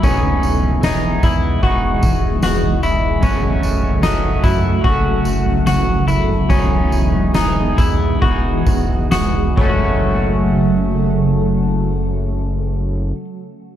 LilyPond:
<<
  \new Staff \with { instrumentName = "Celesta" } { \time 4/4 \key fis \dorian \tempo 4 = 71 r2 cis'''2~ | cis'''8 r2. r8 | r2. dis'''8 cis'''8~ | cis'''1 | }
  \new Staff \with { instrumentName = "Clean electric guitar" } { \time 4/4 \key fis \dorian cis'4 dis'8 e'8 fis'4 fis'8 e'8 | cis'4 dis'8 e'8 fis'4 fis'8 e'8 | cis'4 dis'8 e'8 fis'4 fis'8 <fis a cis' fis'>8~ | <fis a cis' fis'>1 | }
  \new Staff \with { instrumentName = "Clean electric guitar" } { \time 4/4 \key fis \dorian <e b dis' gis'>4 <e b dis' gis'>4 <e b dis' gis'>2 | <fis, cis fis a cis' fis'>4 <fis a cis' fis'>4 <fis a cis' fis'>2 | <e b dis' gis'>4 <e b dis' gis'>4 <e b dis' gis'>4. <fis, cis fis a cis' fis'>8~ | <fis, cis fis a cis' fis'>1 | }
  \new Staff \with { instrumentName = "Ambient pad" } { \clef bass \time 4/4 \key fis \dorian <b, e gis gis' dis''>1 | <cis fis a fis' a'>1 | <b, e gis gis' dis''>2.~ <b, e gis gis' dis''>8 <cis fis a fis' a'>8~ | <cis fis a fis' a'>1 | }
  \new Staff \with { instrumentName = "Analog synth bass" } { \clef bass \time 4/4 \key fis \dorian e,,8 e,,8 e,,8 e,8 e,,8 e,,8 e,,8 e,,8 | fis,,8 fis,,8 fis,,8 fis,8 fis,,8 fis,,8 fis,,8 fis,,8 | e,,8 e,,8 e,,8 e,8 e,,8 e,,8 e,,8 fis,,8~ | fis,,1 | }
  \new DrumStaff \with { instrumentName = "Drums" } \drummode { \time 4/4 <bd tamb tomfh>8 tamb16 tomfh16 <sn tamb>8 <bd tamb tomfh>8 bd8 <bd tamb>16 tomfh16 <sn tamb>16 tomfh16 tamb8 | <bd tamb tomfh>8 tamb16 tomfh16 <sn tamb>8 <bd tamb tomfh>8 bd8 tamb16 tomfh16 <sn tamb>16 tomfh16 tamb16 tomfh16 | <bd tamb tomfh>8 tamb16 tomfh16 <sn tamb>8 <bd tamb tomfh>8 bd8 <bd tamb>16 tomfh16 <sn tamb>16 tomfh16 <cymc bd>8 | r4 r4 r4 r4 | }
>>